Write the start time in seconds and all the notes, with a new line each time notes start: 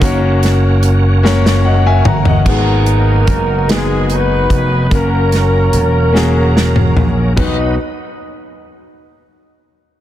Already playing: D#4 F#4
0.01 F#1 A#3 C#4 E4 F#4 A#4 C#5, kick, closed hi-hat
0.09 F#4
0.43 snare, closed hi-hat
0.83 closed hi-hat
1.23 A#3 C#4 F#4 A#4 C#5, snare
1.46 snare
1.65 D#5 F#5
1.86 E5 G#5
2.05 G1 F#5 A#5, mid tom
2.25 D#5 F#5, floor tom
2.45 G#1 G#2 F#3 A#3 B3 D#4 F#4 G#4 A#4, kick, crash
2.49 B3 G#4
2.86 closed hi-hat
3.27 F#1, kick, closed hi-hat
3.67 G#3 A#3 D#4 F#4 G#4, snare, closed hi-hat
3.75 B3
4.10 B3 D#4 F#4 B4, closed hi-hat
4.50 F1, kick, closed hi-hat
4.90 F#1 F#3 A#3 C#4 F#4 A#4, kick, closed hi-hat
4.96 A#3 A#4
5.32 snare, closed hi-hat
5.73 E1, closed hi-hat
6.12 A#3 C#4 F#4 G#4, snare
6.57 snare
6.76 mid tom
6.96 A#1, floor tom
7.36 B1 F#3 B3 D#4 F#4 B4 D#5, kick, floor tom, crash